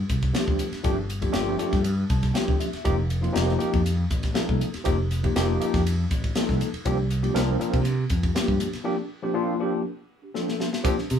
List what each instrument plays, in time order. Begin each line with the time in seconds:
0.09 fretless electric bass C2, kick, hi-hat pedal, ride
0.22 tine electric piano D4 G4, kick, ride
0.33 tine electric piano F3 A3 C4 D4 G4, snare, hi-hat pedal, ride
0.48 fretless electric bass D2, kick
0.59 hi-hat pedal, ride
0.71 tine electric piano D4 G4, muted fretless electric bass stroke, snare, ride
0.84 fretless electric bass G1, tine electric piano F3 A3 C4 D4 G4, kick, hi-hat pedal, ride
0.96 tine electric piano D4 A4
1.10 hi-hat pedal, ride
1.21 tine electric piano F3 A3 C4 D4 G4, kick, ride
1.32 fretless electric bass G1, tine electric piano F3 A3 C4 D4 G4, snare, hi-hat pedal, ride
1.58 tine electric piano F3 A3 C4 D4 G4, hi-hat pedal, ride
1.73 fretless electric bass G2, kick, snare, ride
1.83 tine electric piano D4 G4, hi-hat pedal, ride
2.10 fretless electric bass C2, tine electric piano A5, kick, hi-hat pedal, ride
2.22 tine electric piano D4 A4, kick, snare, ride
2.34 tine electric piano F3 A3 C4 D4 G4 G5, snare, hi-hat pedal, ride
2.48 fretless electric bass D2, kick
2.60 tine electric piano E5, hi-hat pedal, ride
2.73 muted fretless electric bass stroke, snare, ride
2.84 fretless electric bass F1, tine electric piano F3 A#3 C4 D#4 G4, kick, hi-hat pedal, ride
2.97 tine electric piano D#4 A4
3.10 hi-hat pedal, ride
3.22 tine electric piano F3 A#3 C4 D#4 F4, ride
3.32 fretless electric bass F1, tine electric piano F3 A#3 C4 D#4 G4, snare, hi-hat pedal, ride
3.49 snare
3.58 tine electric piano F3 A#3 C4 D#4 G4, hi-hat pedal, ride
3.73 fretless electric bass F2, kick, ride
3.86 hi-hat pedal, ride
4.10 fretless electric bass A1, kick, hi-hat pedal, ride
4.23 tine electric piano D#4 G4, kick, snare, ride
4.34 tine electric piano F3 A#3 C4 D#4 A4, snare, hi-hat pedal, ride
4.49 fretless electric bass C2, kick
4.61 hi-hat pedal, ride
4.74 tine electric piano D#4 G4, muted fretless electric bass stroke, snare, ride
4.84 fretless electric bass F1, tine electric piano F3 A#3 C4 D#4 G4, kick, hi-hat pedal, ride
4.99 tine electric piano D#4 G4
5.11 snare, hi-hat pedal, ride
5.23 tine electric piano F3 A#3 C4 D#4 G4, kick, ride
5.35 fretless electric bass F1, tine electric piano F3 A#3 C4 D#4 G4, snare, hi-hat pedal, ride
5.60 tine electric piano F3 A#3 C4 D#4 G4, hi-hat pedal, ride
5.74 fretless electric bass F2, kick, snare, ride
5.87 hi-hat pedal, ride
6.11 fretless electric bass A1, kick, hi-hat pedal, ride
6.23 tine electric piano D#4 F4, kick, ride
6.35 tine electric piano F3 A#3 C4 D#4 A4, snare, hi-hat pedal, ride
6.49 fretless electric bass C2, kick, snare
6.61 hi-hat pedal, ride
6.73 muted fretless electric bass stroke, ride
6.85 fretless electric bass C2, tine electric piano F3 A#3 C4 D4 G4, kick, hi-hat pedal, ride
6.99 tine electric piano D4 G4
7.10 hi-hat pedal, ride
7.23 tine electric piano F3 A#3 C4 D4 G4, ride
7.34 fretless electric bass C2, tine electric piano F3 A#3 C4 D4 A#4, snare, hi-hat pedal, ride
7.59 tine electric piano F3 A#3 C4 D4 A#4, hi-hat pedal, ride
7.74 fretless electric bass C3, kick, ride
7.84 tine electric piano D4 G4, hi-hat pedal, ride
8.10 fretless electric bass F2, kick, hi-hat pedal, ride
8.23 tine electric piano D4 G4, kick, ride
8.35 tine electric piano F3 A#3 C4 D4 G4, snare, hi-hat pedal, ride
8.48 fretless electric bass G2, kick
8.60 hi-hat pedal, ride
8.73 tine electric piano D4 G4, muted fretless electric bass stroke, snare, ride
8.84 tine electric piano F3 A#3 C4 D4 G4
8.97 tine electric piano D4 A4
9.22 tine electric piano F3 A#3 C4 D4 G4
9.34 tine electric piano F3 A#3 C4 D4 F4
9.59 tine electric piano F3 A#3 C4 D4 G4
9.85 tine electric piano D4 A#4
10.22 tine electric piano D4 G4
10.34 tine electric piano F3 A#3 C4 D4 A4, snare
10.48 snare
10.60 snare
10.73 tine electric piano D4 G4, snare
10.83 tine electric piano F3 A#3 C4 D4 G4, kick, hi-hat pedal, ride
10.97 tine electric piano D4 F4, snare
11.10 fretless electric bass C3, hi-hat pedal, ride